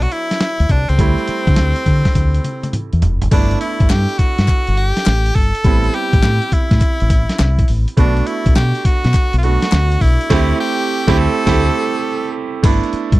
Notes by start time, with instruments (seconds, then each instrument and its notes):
Already playing: grand piano F#3 A3 B3 D4
0.02 tenor saxophone F#4, closed hi-hat
0.12 tenor saxophone E4, closed hi-hat
0.31 snare, closed hi-hat
0.41 snare, closed hi-hat
0.60 fingered electric bass D2, closed hi-hat
0.69 fingered electric bass C2, tenor saxophone D4, kick, closed hi-hat
0.89 fingered electric bass C#2, tenor saxophone C4, closed hi-hat
0.98 fingered electric bass D2, grand piano G3 A3 C4 E4, kick, closed hi-hat
1.18 closed hi-hat
1.28 muted fingered electric bass stroke, closed hi-hat
1.47 fingered electric bass D3, kick, closed hi-hat
1.56 fingered electric bass D2, snare, closed hi-hat
1.76 closed hi-hat
1.86 fingered electric bass D3, kick, closed hi-hat
2.05 kick, snare, closed hi-hat
2.15 fingered electric bass D2, kick, closed hi-hat, high tom
2.34 closed hi-hat
2.44 closed hi-hat, mid tom
2.63 closed hi-hat, mid tom
2.73 closed hi-hat, mid tom
2.93 fingered electric bass E2, closed hi-hat
3.02 fingered electric bass F1, closed hi-hat, floor tom
3.22 fingered electric bass F#1, closed hi-hat, floor tom
3.31 fingered electric bass G1, grand piano A3 B3 D4 E4, tenor saxophone D4, kick, closed hi-hat, crash
3.51 closed hi-hat
3.61 tenor saxophone E4, closed hi-hat
3.80 fingered electric bass G1, kick, closed hi-hat
3.90 fingered electric bass G2, tenor saxophone G4, snare, clap, closed hi-hat
4.09 closed hi-hat
4.18 tenor saxophone F#4, muted fingered electric bass stroke, kick, closed hi-hat
4.38 fingered electric bass G2, snare, closed hi-hat
4.48 muted fingered electric bass stroke, kick, clap, closed hi-hat
4.67 fingered electric bass G1, closed hi-hat
4.77 tenor saxophone G4, closed hi-hat
4.97 snare, closed hi-hat
5.06 fingered electric bass A1, snare, clap, closed hi-hat
5.26 closed hi-hat
5.35 fingered electric bass G1, tenor saxophone A4, kick, open hi-hat
5.55 closed hi-hat
5.64 fingered electric bass A1, grand piano G3 B3 C4 E4, kick, closed hi-hat
5.84 closed hi-hat
5.94 tenor saxophone G4, closed hi-hat
6.13 fingered electric bass A1, kick, closed hi-hat
6.23 fingered electric bass A2, snare, clap, closed hi-hat
6.42 closed hi-hat
6.52 tenor saxophone E4, muted fingered electric bass stroke, kick, closed hi-hat
6.71 fingered electric bass A2, kick, snare, closed hi-hat
6.81 muted fingered electric bass stroke, kick, clap, closed hi-hat
7.00 fingered electric bass A1, closed hi-hat
7.10 kick, closed hi-hat
7.29 snare, closed hi-hat
7.39 fingered electric bass C2, snare, clap, closed hi-hat
7.59 kick, closed hi-hat
7.68 fingered electric bass A1, open hi-hat
7.88 closed hi-hat
7.97 fingered electric bass B1, grand piano A3 B3 D4 F#4, tenor saxophone D4, kick, closed hi-hat
8.17 closed hi-hat
8.27 tenor saxophone E4, closed hi-hat
8.46 fingered electric bass B1, kick, closed hi-hat
8.56 fingered electric bass B2, tenor saxophone G4, snare, clap, closed hi-hat
8.75 closed hi-hat
8.85 tenor saxophone F#4, muted fingered electric bass stroke, kick, closed hi-hat
9.04 fingered electric bass B2, snare, closed hi-hat
9.14 muted fingered electric bass stroke, kick, clap, closed hi-hat
9.33 fingered electric bass B1, closed hi-hat
9.39 tenor saxophone F4
9.43 grand piano A3 B3 D4 F#4, tenor saxophone F#4, closed hi-hat
9.62 snare, closed hi-hat
9.72 fingered electric bass D2, snare, clap, closed hi-hat
9.92 closed hi-hat
10.01 fingered electric bass B1, tenor saxophone E4, kick, open hi-hat
10.21 closed hi-hat
10.30 fingered electric bass D2, grand piano A3 C4 E4 G4, kick, snare, crash
10.60 tenor saxophone G4
11.07 fingered electric bass D2, grand piano A3 C4 E4 G4, kick, snare
11.18 tenor saxophone A4
11.46 fingered electric bass D2, grand piano A3 C4 E4 G4, kick, snare, crash
12.63 fingered electric bass G1, grand piano A3 B3 D4 E4, kick, closed hi-hat, crash, tambourine
12.83 closed hi-hat
12.93 muted fingered electric bass stroke, closed hi-hat
13.12 fingered electric bass G2, kick, closed hi-hat